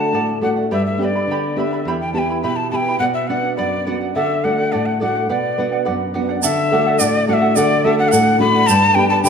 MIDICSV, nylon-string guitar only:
0, 0, Header, 1, 2, 480
1, 0, Start_track
1, 0, Tempo, 573614
1, 597, Time_signature, 2, 2, 24, 8
1, 3955, Tempo, 566572
1, 7822, End_track
2, 0, Start_track
2, 0, Title_t, "Nylon-string guitar"
2, 0, Program_c, 0, 24
2, 0, Note_on_c, 0, 50, 49
2, 0, Note_on_c, 0, 57, 38
2, 0, Note_on_c, 0, 62, 37
2, 0, Note_on_c, 0, 66, 42
2, 99, Note_off_c, 0, 50, 0
2, 107, Note_on_c, 0, 45, 55
2, 256, Note_off_c, 0, 57, 0
2, 258, Note_off_c, 0, 62, 0
2, 258, Note_off_c, 0, 66, 0
2, 346, Note_on_c, 0, 57, 41
2, 351, Note_on_c, 0, 62, 36
2, 356, Note_on_c, 0, 66, 44
2, 543, Note_off_c, 0, 57, 0
2, 545, Note_off_c, 0, 62, 0
2, 549, Note_off_c, 0, 66, 0
2, 578, Note_off_c, 0, 45, 0
2, 595, Note_on_c, 0, 43, 52
2, 819, Note_on_c, 0, 59, 39
2, 824, Note_on_c, 0, 62, 36
2, 830, Note_on_c, 0, 67, 40
2, 1063, Note_off_c, 0, 43, 0
2, 1065, Note_on_c, 0, 50, 54
2, 1211, Note_off_c, 0, 59, 0
2, 1214, Note_off_c, 0, 62, 0
2, 1218, Note_off_c, 0, 67, 0
2, 1306, Note_on_c, 0, 59, 41
2, 1309, Note_on_c, 0, 62, 32
2, 1313, Note_on_c, 0, 67, 39
2, 1503, Note_off_c, 0, 59, 0
2, 1505, Note_off_c, 0, 62, 0
2, 1508, Note_off_c, 0, 67, 0
2, 1538, Note_off_c, 0, 50, 0
2, 1550, Note_on_c, 0, 40, 52
2, 1786, Note_on_c, 0, 59, 39
2, 1791, Note_on_c, 0, 64, 35
2, 1796, Note_on_c, 0, 67, 44
2, 2020, Note_off_c, 0, 40, 0
2, 2037, Note_on_c, 0, 47, 51
2, 2176, Note_off_c, 0, 59, 0
2, 2177, Note_off_c, 0, 64, 0
2, 2181, Note_off_c, 0, 67, 0
2, 2269, Note_on_c, 0, 59, 38
2, 2272, Note_on_c, 0, 64, 37
2, 2279, Note_on_c, 0, 67, 42
2, 2465, Note_off_c, 0, 64, 0
2, 2466, Note_off_c, 0, 59, 0
2, 2471, Note_off_c, 0, 67, 0
2, 2498, Note_off_c, 0, 47, 0
2, 2508, Note_on_c, 0, 47, 48
2, 2752, Note_on_c, 0, 59, 41
2, 2757, Note_on_c, 0, 62, 38
2, 2760, Note_on_c, 0, 66, 45
2, 2978, Note_off_c, 0, 47, 0
2, 2998, Note_on_c, 0, 42, 55
2, 3138, Note_off_c, 0, 59, 0
2, 3140, Note_off_c, 0, 62, 0
2, 3142, Note_off_c, 0, 66, 0
2, 3241, Note_on_c, 0, 59, 38
2, 3243, Note_on_c, 0, 62, 37
2, 3246, Note_on_c, 0, 66, 43
2, 3431, Note_off_c, 0, 59, 0
2, 3431, Note_off_c, 0, 62, 0
2, 3434, Note_off_c, 0, 66, 0
2, 3462, Note_off_c, 0, 42, 0
2, 3477, Note_on_c, 0, 50, 50
2, 3718, Note_on_c, 0, 57, 41
2, 3723, Note_on_c, 0, 62, 38
2, 3727, Note_on_c, 0, 66, 43
2, 3940, Note_off_c, 0, 50, 0
2, 3968, Note_on_c, 0, 45, 57
2, 4101, Note_off_c, 0, 57, 0
2, 4104, Note_off_c, 0, 62, 0
2, 4105, Note_off_c, 0, 66, 0
2, 4203, Note_on_c, 0, 57, 38
2, 4207, Note_on_c, 0, 62, 37
2, 4208, Note_on_c, 0, 66, 44
2, 4394, Note_off_c, 0, 57, 0
2, 4395, Note_off_c, 0, 62, 0
2, 4396, Note_off_c, 0, 66, 0
2, 4429, Note_off_c, 0, 45, 0
2, 4443, Note_on_c, 0, 47, 47
2, 4676, Note_on_c, 0, 59, 41
2, 4681, Note_on_c, 0, 62, 36
2, 4686, Note_on_c, 0, 66, 47
2, 4908, Note_off_c, 0, 47, 0
2, 4923, Note_on_c, 0, 42, 53
2, 5063, Note_off_c, 0, 59, 0
2, 5064, Note_off_c, 0, 62, 0
2, 5068, Note_off_c, 0, 66, 0
2, 5155, Note_on_c, 0, 59, 41
2, 5160, Note_on_c, 0, 62, 37
2, 5164, Note_on_c, 0, 66, 45
2, 5349, Note_off_c, 0, 59, 0
2, 5353, Note_off_c, 0, 62, 0
2, 5354, Note_off_c, 0, 66, 0
2, 5388, Note_off_c, 0, 42, 0
2, 5411, Note_on_c, 0, 50, 58
2, 5646, Note_on_c, 0, 57, 43
2, 5653, Note_on_c, 0, 62, 44
2, 5658, Note_on_c, 0, 66, 52
2, 5872, Note_off_c, 0, 50, 0
2, 5880, Note_on_c, 0, 45, 60
2, 6028, Note_off_c, 0, 57, 0
2, 6033, Note_off_c, 0, 62, 0
2, 6034, Note_off_c, 0, 66, 0
2, 6118, Note_on_c, 0, 57, 48
2, 6126, Note_on_c, 0, 62, 44
2, 6126, Note_on_c, 0, 66, 53
2, 6345, Note_off_c, 0, 45, 0
2, 6357, Note_on_c, 0, 50, 58
2, 6502, Note_off_c, 0, 57, 0
2, 6506, Note_off_c, 0, 66, 0
2, 6507, Note_off_c, 0, 62, 0
2, 6594, Note_on_c, 0, 57, 49
2, 6600, Note_on_c, 0, 62, 44
2, 6605, Note_on_c, 0, 66, 51
2, 6823, Note_off_c, 0, 50, 0
2, 6832, Note_on_c, 0, 45, 67
2, 6979, Note_off_c, 0, 57, 0
2, 6982, Note_off_c, 0, 62, 0
2, 6986, Note_off_c, 0, 66, 0
2, 7057, Note_on_c, 0, 57, 48
2, 7063, Note_on_c, 0, 62, 42
2, 7066, Note_on_c, 0, 66, 51
2, 7257, Note_off_c, 0, 57, 0
2, 7260, Note_off_c, 0, 62, 0
2, 7261, Note_off_c, 0, 66, 0
2, 7299, Note_off_c, 0, 45, 0
2, 7307, Note_on_c, 0, 43, 58
2, 7536, Note_on_c, 0, 59, 46
2, 7540, Note_on_c, 0, 67, 54
2, 7543, Note_on_c, 0, 62, 47
2, 7775, Note_off_c, 0, 43, 0
2, 7776, Note_on_c, 0, 50, 63
2, 7822, Note_off_c, 0, 50, 0
2, 7822, Note_off_c, 0, 59, 0
2, 7822, Note_off_c, 0, 62, 0
2, 7822, Note_off_c, 0, 67, 0
2, 7822, End_track
0, 0, End_of_file